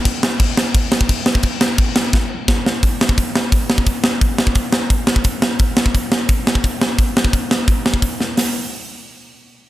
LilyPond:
\new DrumStaff \with { instrumentName = "Drums" } \drummode { \time 4/4 \tempo 4 = 173 <cymc bd>8 sn8 <cymc bd>8 sn8 <cymc bd>8 sn16 bd16 <cymc bd>8 sn16 bd16 | <cymc bd>8 sn8 <cymc bd>8 sn8 <bd sn>4 <bd sn>8 sn8 | <hho bd>8 sn16 bd16 <hho bd>8 sn8 <hho bd>8 sn16 bd16 <hho bd>8 sn8 | <hho bd>8 sn16 bd16 <hho bd>8 sn8 <hho bd>8 sn16 bd16 <hho bd>8 sn8 |
<hho bd>8 sn16 bd16 <hho bd>8 sn8 <hho bd>8 sn16 bd16 <hho bd>8 sn8 | <hho bd>8 sn16 bd16 <hho bd>8 sn8 <hho bd>8 sn16 bd16 <hho bd>8 sn8 | <hho sn>4 r4 r4 r4 | }